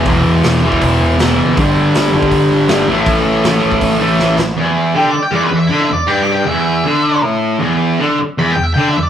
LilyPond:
<<
  \new Staff \with { instrumentName = "Lead electric guitar" } { \time 4/4 \key a \major \tempo 4 = 158 r1 | r1 | r1 | r4 \tuplet 3/2 { g'8 d''8 g''8 d''8 b'8 e''8 b''8 e''8 d''8 } |
\tuplet 3/2 { g''8 d'''8 g''8 } e''2 r4 | r2 \tuplet 3/2 { b''8 g''8 e''8 g''8 e''8 d''8 } | }
  \new Staff \with { instrumentName = "Distorted electric guitar" } { \clef bass \time 4/4 \key a \major <e, b, e>4. <e, b, e>4. <e, b, e>4 | <g, d g>4. <g, d g>4. <g, d g>8 <a, e a>8~ | <a, e a>4 <a, e a>4. <a, e a>4 r8 | e,4 d8 r8 e,8 e,8 d8 e,8 |
g,4 e,4 d4 a,4 | e,4 d8 r8 e,8 e,8 d8 e,8 | }
  \new Staff \with { instrumentName = "Picked electric bass" } { \clef bass \time 4/4 \key a \major e,,8 e,,8 e,,8 e,,8 e,,8 e,,8 e,,8 fis,,8 | g,,8 g,,8 g,,8 g,,8 g,,8 g,,8 g,,8 a,,8 | a,,8 a,,8 a,,8 a,,8 a,,8 a,,8 a,,8 a,,8 | r1 |
r1 | r1 | }
  \new DrumStaff \with { instrumentName = "Drums" } \drummode { \time 4/4 <hho bd>4 <hho sn>8. bd16 <hho bd>4 <hho sn>4 | <hho bd>4 <hho sn>8. bd16 <hho bd>4 <hho sn>4 | <hho bd>4 <hho sn>8. bd16 <hho bd>4 sn8 sn8 | r4 r4 r4 r4 |
r4 r4 r4 r4 | r4 r4 r4 r4 | }
>>